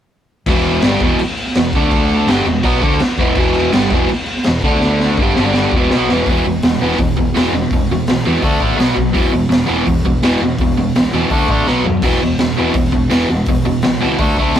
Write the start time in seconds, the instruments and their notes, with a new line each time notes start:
0.46 fingered electric bass E1, overdriven electric guitar E2 B2 E3, kick, crash
0.64 crash
0.82 fingered electric bass G1, overdriven electric guitar G2 D3 G3, snare, crash
1.00 fingered electric bass E1, overdriven electric guitar E2 B2 E3, kick, crash
1.19 muted overdriven electric guitar stroke, crash
1.37 crash
1.47 snare
1.55 fingered electric bass E1, overdriven electric guitar E2 B2, snare, crash
1.73 fingered electric bass D2, overdriven electric guitar D3 A3, kick, crash
1.77 overdriven electric guitar D4
1.91 kick, crash
2.10 crash
2.26 fingered electric bass G1, overdriven electric guitar G2 D3, snare, crash
2.31 overdriven electric guitar G3
2.45 fingered electric bass E1, overdriven electric guitar E2 B2, crash
2.63 fingered electric bass B1, overdriven electric guitar B2 F#3 B3, kick, crash
2.81 fingered electric bass D2, overdriven electric guitar D3 A3 D4, kick, crash
2.92 snare
3.00 muted overdriven electric guitar stroke, snare, crash
3.18 fingered electric bass E1, overdriven electric guitar E2 B2 E3, kick, crash
3.36 fingered electric bass E1, overdriven electric guitar E2 B2 E3, kick, crash
3.54 crash
3.72 fingered electric bass G1, overdriven electric guitar G2 D3 G3, snare, crash
3.90 fingered electric bass E1, overdriven electric guitar E2 B2 E3, kick, crash
4.08 muted overdriven electric guitar stroke, crash
4.26 crash
4.36 snare
4.44 fingered electric bass E1, overdriven electric guitar E2 B2, snare, crash
4.54 snare
4.61 fingered electric bass D2, overdriven electric guitar D3, kick, crash
4.65 overdriven electric guitar A3 D4
4.81 snare
5.00 snare
5.17 fingered electric bass G1, overdriven electric guitar G2 D3, kick
5.22 overdriven electric guitar G3
5.36 fingered electric bass G1, overdriven electric guitar G2 D3, snare
5.40 overdriven electric guitar G3
5.53 snare
5.71 fingered electric bass E1, kick
5.76 overdriven electric guitar E2 B2 E3
5.90 fingered electric bass B1, overdriven electric guitar B2, snare
5.95 overdriven electric guitar F#3 B3
6.09 fingered electric bass E1, overdriven electric guitar E2 B2 E3, snare
6.26 fingered electric bass E1, overdriven electric guitar E2 B2, kick, open hi-hat
6.30 overdriven electric guitar E3
6.45 fingered electric bass E1, overdriven electric guitar E2 B2
6.62 fingered electric bass E1, overdriven electric guitar E2 B2, snare, open hi-hat
6.80 fingered electric bass E1, overdriven electric guitar E2 B2 E3
6.92 snare
6.99 overdriven electric guitar E2 B2, fingered electric bass E2, kick, open hi-hat
7.17 fingered electric bass E1, overdriven electric guitar E2 B2, kick
7.35 fingered electric bass E1, overdriven electric guitar E2 B2 E3, snare, open hi-hat
7.51 fingered electric bass E1, overdriven electric guitar E2 B2
7.71 fingered electric bass E1, overdriven electric guitar E2 B2, kick, open hi-hat
7.88 fingered electric bass E1, overdriven electric guitar E2
7.92 overdriven electric guitar B2
8.07 fingered electric bass B1, overdriven electric guitar E2 B2, snare, open hi-hat
8.25 overdriven electric guitar E2 B2 E3, fingered electric bass E2
8.35 snare
8.42 fingered electric bass D2, overdriven electric guitar D3 A3 D4, kick, open hi-hat
8.60 fingered electric bass A1, overdriven electric guitar D3 A3 D4, kick
8.76 fingered electric bass B1, overdriven electric guitar B2 F#3 B3, snare, open hi-hat
8.94 fingered electric bass B1, overdriven electric guitar B2 F#3, kick
9.13 fingered electric bass E1, overdriven electric guitar E2 B2 E3, kick, open hi-hat
9.32 fingered electric bass E1, overdriven electric guitar E2 B2
9.49 fingered electric bass E1, overdriven electric guitar E2 B2, snare, open hi-hat
9.66 fingered electric bass E1, overdriven electric guitar E2 B2 E3
9.87 fingered electric bass E2, overdriven electric guitar E2 B2, kick, open hi-hat
10.04 fingered electric bass E1, overdriven electric guitar E2 B2, kick
10.22 fingered electric bass E1, overdriven electric guitar E2 B2 E3, snare, open hi-hat
10.40 fingered electric bass E1, overdriven electric guitar E2 B2
10.58 fingered electric bass E1, overdriven electric guitar E2 B2, kick, open hi-hat
10.76 fingered electric bass E1, overdriven electric guitar E2 B2
10.94 fingered electric bass B1, overdriven electric guitar E2 B2, snare, open hi-hat
11.13 fingered electric bass E2, overdriven electric guitar E2 B2 E3
11.30 fingered electric bass D2, overdriven electric guitar D3 A3 D4, kick, open hi-hat
11.48 fingered electric bass A1, overdriven electric guitar D3 A3 D4, kick
11.66 fingered electric bass B1, overdriven electric guitar B2 F#3 B3, snare
11.85 fingered electric bass F#2, overdriven electric guitar B2 F#3, floor tom
12.02 fingered electric bass E1, overdriven electric guitar E2 B2 E3, kick, open hi-hat, crash
12.22 fingered electric bass E1, overdriven electric guitar E2 B2
12.38 fingered electric bass E1, overdriven electric guitar E2 B2, snare, open hi-hat
12.57 fingered electric bass E1, overdriven electric guitar E2 B2 E3
12.74 fingered electric bass E2, overdriven electric guitar E2 B2, kick, open hi-hat
12.85 snare
12.92 fingered electric bass E1, overdriven electric guitar E2 B2, kick
13.10 fingered electric bass E1, overdriven electric guitar E2 B2 E3, snare, open hi-hat
13.29 fingered electric bass E1, overdriven electric guitar E2 B2
13.46 fingered electric bass E1, overdriven electric guitar E2 B2, kick, open hi-hat
13.65 fingered electric bass E1, overdriven electric guitar E2 B2
13.82 fingered electric bass B1, overdriven electric guitar E2 B2, snare, open hi-hat
14.00 fingered electric bass C#2, overdriven electric guitar E2 B2 E3
14.18 fingered electric bass D2, overdriven electric guitar D3 A3 D4, kick, open hi-hat
14.37 fingered electric bass C#2, overdriven electric guitar D3 A3, kick
14.42 overdriven electric guitar D4
14.55 fingered electric bass B1, overdriven electric guitar B2, snare, open hi-hat